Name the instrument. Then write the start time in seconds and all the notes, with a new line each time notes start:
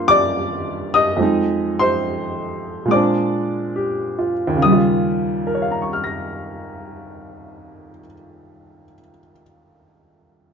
upright piano
Already playing: G2 G3 A#3 F4 C5 C6
0.08 D5 D6
0.94 D#5 D#6
1.17 F2 F3 G#3
1.22 D#4
1.79 C5 C6
2.85 A#2 G#3
2.91 C4 D5 D6
2.96 D4
3.76 G4
4.19 F4
4.47 D#2
4.56 C#3
4.62 G3 D#6
4.72 F4
5.47 A#4
5.55 C#5
5.62 F5
5.71 A#5
5.82 C#6
5.93 F6
6.04 A#6